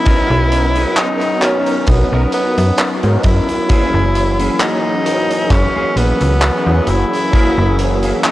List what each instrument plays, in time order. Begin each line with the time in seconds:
Already playing: tine electric piano F#3 B3 C#4 A#4 D#5, ambient pad B3 F#5 A#5 D#6, tenor saxophone E4
0.04 fm bass B1, tine electric piano F#3 B3 C#4 A#4 D#5, clean electric guitar B3 D#4 A#4, kick, closed hi-hat
0.30 fm bass B1
0.52 closed hi-hat
0.75 clean electric guitar B3 D#4 G#4, closed hi-hat
0.96 tenor saxophone D#4, clap, closed hi-hat
1.21 closed hi-hat
1.41 tine electric piano F#3 B3 C#4 D#4 A#4, tenor saxophone C#4, clap, closed hi-hat
1.67 closed hi-hat
1.87 fm bass B1, tenor saxophone B3, muted clean electric guitar stroke, kick, closed hi-hat
2.12 fm bass B1, clean electric guitar B3 D#4 A#4
2.32 tenor saxophone B3, closed hi-hat
2.58 fm bass F#2, closed hi-hat
2.78 clap, closed hi-hat
3.02 fm bass G#2, tine electric piano F#3 B3 C#4 A#4 D#5, closed hi-hat
3.23 fm bass F#2, tenor saxophone E4, muted clean electric guitar stroke, kick, closed hi-hat
3.48 closed hi-hat
3.68 fm bass F#1, tine electric piano E3 F#3 A#3 C#4 G#4, clean electric guitar A#3 E4 G#4, ambient pad A#4 F#5 G#5 E6, kick, closed hi-hat
3.94 fm bass F#1
4.15 closed hi-hat
4.40 clean electric guitar A#3 E4 G#4, closed hi-hat
4.60 tenor saxophone D#4, clap, closed hi-hat
5.04 tine electric piano E3 F#3 C#4 G#4 A#4, closed hi-hat
5.31 closed hi-hat
5.50 fm bass F#1, tenor saxophone C#4, muted clean electric guitar stroke, kick, clap, closed hi-hat
5.76 clean electric guitar A#3 E4 G#4
5.97 fm bass A#1, tenor saxophone B3, closed hi-hat
6.21 fm bass C#2, closed hi-hat
6.42 clap, closed hi-hat
6.66 fm bass E2, tine electric piano F#3 A#3 C#4 E4 G#4
6.87 fm bass F#1, tenor saxophone E4, muted clean electric guitar stroke, closed hi-hat
7.13 closed hi-hat
7.31 fm bass F#1, tine electric piano E3 F#3 A#3 C#4 G#4, clean electric guitar A#3 E4 A#4, kick, closed hi-hat
7.58 fm bass F#1
7.79 closed hi-hat
8.03 clean electric guitar A#3 E4 G#4, closed hi-hat
8.24 tenor saxophone D#4, clap, closed hi-hat